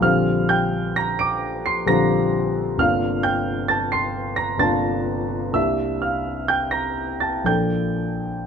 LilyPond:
<<
  \new Staff \with { instrumentName = "Grand piano" } { \time 3/4 \key c \mixolydian \tempo 4 = 65 <f'' f'''>8 <g'' g'''>8 <bes'' bes'''>16 <d''' d''''>8 <c''' c''''>16 <bes'' bes'''>4 | <f'' f'''>8 <g'' g'''>8 <a'' a'''>16 <c''' c''''>8 <bes'' bes'''>16 <a'' a'''>4 | <e'' e'''>8 <f'' f'''>8 <g'' g'''>16 <bes'' bes'''>8 <a'' a'''>16 <g'' g'''>4 | }
  \new Staff \with { instrumentName = "Grand piano" } { \time 3/4 \key c \mixolydian <bes,, d g c' f'>2 <bes,, d g c' f'>4 | <g,, c bes d' f'>2 <g,, c bes d' f'>4 | <c, c bes d' g'>2 <bes,, f bes d' a'>4 | }
>>